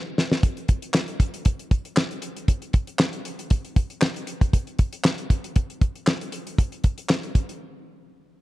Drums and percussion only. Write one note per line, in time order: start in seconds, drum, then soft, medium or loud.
0.18 snare medium
0.32 snare medium
0.43 kick medium
0.43 closed hi-hat medium
0.57 closed hi-hat soft
0.68 kick medium
0.68 closed hi-hat medium
0.82 closed hi-hat medium
0.94 snare loud
0.94 clap loud
1.08 closed hi-hat soft
1.20 kick medium
1.20 closed hi-hat medium
1.34 closed hi-hat medium
1.45 kick loud
1.45 closed hi-hat medium
1.59 closed hi-hat soft
1.71 kick medium
1.71 closed hi-hat medium
1.85 closed hi-hat soft
1.96 snare loud
1.96 clap medium
2.11 closed hi-hat soft
2.22 closed hi-hat medium
2.37 closed hi-hat medium
2.48 kick medium
2.48 closed hi-hat medium
2.62 closed hi-hat soft
2.73 kick medium
2.73 closed hi-hat medium
2.87 closed hi-hat soft
2.99 snare loud
2.99 clap medium
3.13 closed hi-hat soft
3.25 closed hi-hat medium
3.39 closed hi-hat medium
3.50 kick loud
3.50 closed hi-hat medium
3.65 closed hi-hat soft
3.76 kick medium
3.76 closed hi-hat medium
3.90 closed hi-hat soft
4.01 snare loud
4.01 clap loud
4.16 closed hi-hat soft
4.27 closed hi-hat medium
4.41 kick medium
4.41 closed hi-hat medium
4.53 kick medium
4.53 closed hi-hat medium
4.67 closed hi-hat soft
4.79 kick medium
4.79 closed hi-hat medium
4.93 closed hi-hat medium
5.04 snare loud
5.04 clap medium
5.18 closed hi-hat soft
5.30 kick medium
5.30 closed hi-hat medium
5.44 closed hi-hat medium
5.56 kick loud
5.56 closed hi-hat medium
5.70 closed hi-hat soft
5.81 kick medium
5.81 closed hi-hat medium
5.95 closed hi-hat soft
6.07 snare loud
6.07 clap medium
6.21 closed hi-hat soft
6.32 closed hi-hat medium
6.47 closed hi-hat medium
6.58 kick medium
6.58 closed hi-hat medium
6.72 closed hi-hat soft
6.84 kick medium
6.84 closed hi-hat medium
6.98 closed hi-hat medium
7.09 snare loud
7.09 clap medium
7.23 closed hi-hat soft
7.35 kick medium
7.35 closed hi-hat medium
7.49 closed hi-hat medium